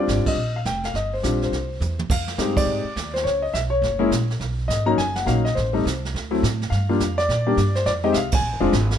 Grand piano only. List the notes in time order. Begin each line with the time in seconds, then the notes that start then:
Already playing: G3 C4 D4 F4
0.00 D5
0.28 D#5
0.56 F5
0.66 G5
0.85 F5
0.96 D#5
1.14 C5
1.23 G3 C4 D4 F4
1.43 C5
2.11 F5
2.38 G#3 C4 D#4 G4
2.57 D5
3.14 C5
3.24 C#5
3.42 D#5
3.54 E5
3.70 C#5
3.99 G#3 A#3 C#4 E4
4.68 D#5
4.86 F#3 A#3 C#4 D#4 A#5
4.98 G#5
5.16 F#5
5.26 F#3 A#3 C#4 D#4 F5
5.45 D#5
5.55 C5
5.73 G3 A3 C4 D#4
6.31 F#3 A3 C4 E4
6.70 F5
6.89 G3 A#3 D4 F4
7.18 D5
7.46 G3 A#3 D4 G4
7.76 C5
7.86 D5
8.04 G#3 C4 D#4 G4 D#5
8.13 E5
8.17 F5
8.35 G#5
8.60 G#3 C4 D4 F4